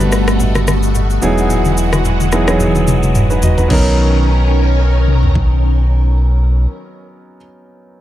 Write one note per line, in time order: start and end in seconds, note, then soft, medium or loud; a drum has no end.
0.00 1.19 G1 medium
0.00 1.21 B2 medium
0.00 1.24 G3 loud
0.00 1.21 A3 medium
0.00 1.22 B3 loud
0.00 1.24 D4 loud
0.00 1.25 F#4 loud
0.00 3.66 F#4 medium
0.00 1.25 A4 loud
0.00 0.60 B4 medium
0.00 high conga medium
0.00 shaker medium
0.12 cross-stick medium
0.12 shaker medium
0.28 cross-stick loud
0.28 shaker medium
0.40 low conga medium
0.40 shaker medium
0.55 cross-stick medium
0.55 high conga medium
0.55 shaker soft
0.67 cross-stick loud
0.67 high conga medium
0.67 shaker medium
0.83 shaker soft
0.95 low conga medium
0.95 shaker medium
1.10 shaker soft
1.22 3.66 E1 medium
1.22 3.68 E3 medium
1.22 2.11 F#3 medium
1.22 3.68 G#3 medium
1.22 2.11 B3 medium
1.22 2.11 D#4 medium
1.22 2.11 E4 medium
1.22 2.11 G#4 medium
1.22 high conga soft
1.22 shaker medium
1.38 shaker soft
1.50 low conga medium
1.50 shaker medium
1.65 high conga medium
1.65 shaker soft
1.77 shaker medium
1.93 cross-stick medium
1.93 high conga medium
1.93 shaker medium
2.05 low conga medium
2.05 shaker medium
2.20 high conga medium
2.20 shaker medium
2.32 2.44 F#3 medium
2.32 2.45 B3 medium
2.32 2.45 D#4 medium
2.32 2.45 E4 medium
2.32 2.45 G#4 medium
2.32 cross-stick medium
2.32 shaker medium
2.47 3.35 F#3 medium
2.47 3.35 B3 medium
2.47 3.15 D#4 medium
2.47 3.15 E4 medium
2.47 3.16 G#4 medium
2.47 cross-stick loud
2.47 shaker soft
2.60 high tom medium
2.60 low conga medium
2.60 shaker medium
2.75 high conga medium
2.75 shaker soft
2.87 mid tom medium
2.87 high conga medium
2.87 shaker medium
3.03 mid tom medium
3.03 shaker soft
3.15 mid tom medium
3.15 low conga medium
3.15 shaker medium
3.30 3.42 D#4 soft
3.30 3.42 B4 medium
3.30 shaker soft
3.42 3.57 F#4 medium
3.42 3.57 D#5 medium
3.42 floor tom medium
3.42 high conga soft
3.42 shaker medium
3.58 3.70 D#4 medium
3.58 3.84 B4 medium
3.58 floor tom medium
3.58 shaker soft
3.68 6.66 B1 loud
3.68 6.66 D#3 medium
3.68 7.35 F#3 medium
3.68 7.36 B3 medium
3.68 6.66 C#4 medium
3.68 7.36 C#4 medium
3.68 7.37 D#4 medium
3.68 6.66 A#4 medium
3.68 kick loud
3.68 crash medium
3.68 high conga medium
3.72 7.38 A#4 medium
5.08 mid tom medium
5.23 floor tom medium
5.35 kick medium